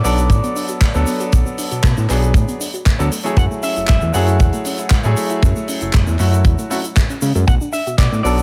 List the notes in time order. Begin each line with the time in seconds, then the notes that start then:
0.04 B1 F#3 B3 D4 A4 D5, open hi-hat, shaker
0.18 F#4, closed hi-hat, shaker
0.30 A2 A3, kick, closed hi-hat, shaker
0.44 B3, closed hi-hat, shaker
0.56 D4, open hi-hat, shaker
0.68 F#4, closed hi-hat, shaker
0.81 A3, kick, clap, closed hi-hat, shaker
0.94 D2 F#3 B3 D4 A4, shaker
1.07 B3, open hi-hat, shaker
1.20 F#4, closed hi-hat, shaker
1.32 B1 A3, kick, closed hi-hat, shaker
1.46 B3, shaker
1.58 D4, open hi-hat, shaker
1.71 B2 F#4, closed hi-hat, shaker
1.83 B2 A3, kick, clap, closed hi-hat, shaker
1.97 A2 B3, shaker
2.09 B1 F#3 B3 D4 G#4, clap, open hi-hat, shaker
2.22 F#4, closed hi-hat, shaker
2.34 A2 A3, kick, closed hi-hat, shaker
2.48 B3, closed hi-hat, shaker
2.60 D4, open hi-hat, shaker
2.74 F#4, closed hi-hat, shaker
2.86 A3, kick, clap, closed hi-hat, shaker
2.99 D2 F#3 B3 D4 A4, closed hi-hat, shaker
3.12 A3, open hi-hat, shaker
3.24 F#3 A3 E4 G#4, closed hi-hat, shaker
3.37 F#2 G#3 F#5, kick, closed hi-hat, shaker
3.51 A3, shaker
3.63 C#4 E5, open hi-hat, shaker
3.76 F#1 E4, closed hi-hat, shaker
3.88 F#1 G#3 E5, kick, clap, closed hi-hat, shaker
4.01 E2 A3, shaker
4.13 F#2 F#3 A3 E4 G#4 F#5, open hi-hat, shaker
4.27 E4, closed hi-hat, shaker
4.39 E2 G#3, kick, closed hi-hat, shaker
4.53 A3, closed hi-hat, shaker
4.65 C#4, open hi-hat, shaker
4.78 E4, closed hi-hat, shaker
4.90 G#3, kick, clap, closed hi-hat, shaker
5.04 A2 F#3 A3 E4 G#4, shaker
5.17 A3, open hi-hat, shaker
5.30 E4, closed hi-hat, shaker
5.43 F#2 G#3, kick, closed hi-hat, shaker
5.56 A3, shaker
5.68 C#4, open hi-hat, shaker
5.81 F#1 E4, closed hi-hat, shaker
5.93 F#1 G#3, kick, clap, closed hi-hat, shaker
6.07 E2 A3, shaker
6.19 F#2 F#3 A3 E4 F#4, clap, open hi-hat, shaker
6.33 E4, closed hi-hat, shaker
6.45 E2 G#3, kick, closed hi-hat, shaker
6.59 A3, closed hi-hat, shaker
6.70 F#3 A3 C#4 E4 F#4, open hi-hat, shaker
6.84 E4, closed hi-hat, shaker
6.96 G#3, kick, clap, closed hi-hat, shaker
7.10 C#4, closed hi-hat, shaker
7.22 C#3 G#3, open hi-hat, shaker
7.35 F#2 G#3, closed hi-hat, shaker
7.47 B1 F#5, kick, closed hi-hat, shaker
7.61 D4, shaker
7.73 D4 E5, open hi-hat, shaker
7.87 B2 F#4, closed hi-hat, shaker
7.98 B2 A3 D5, kick, clap, closed hi-hat, shaker
8.12 A2 B3, shaker
8.23 B1 F#3 B3 D4 A4 D5, open hi-hat, shaker
8.38 F#4, closed hi-hat, shaker